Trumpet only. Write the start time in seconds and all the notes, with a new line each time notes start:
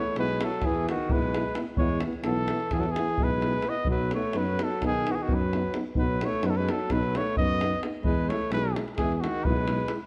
Already playing: C#5
0.19 B4
0.44 A4
0.65 G#4
0.89 F#4
1.12 B4
1.78 C#5
2.26 A4
2.73 G#4
2.81 A4
2.91 G#4
3.23 B4
3.69 D#5
3.90 B4
4.15 C#5
4.37 B4
4.64 A4
4.86 G#4
5.12 F#4 G#4
5.23 F#4
5.34 B4
5.99 B4
6.25 C#5
6.46 A4 B4
6.57 B4
6.71 A4
6.92 B4
7.17 C#5
7.37 D#5
8.05 B4
8.29 C#5
8.53 B4
8.97 G#4
9.14 G#4
9.21 F#4
9.45 B4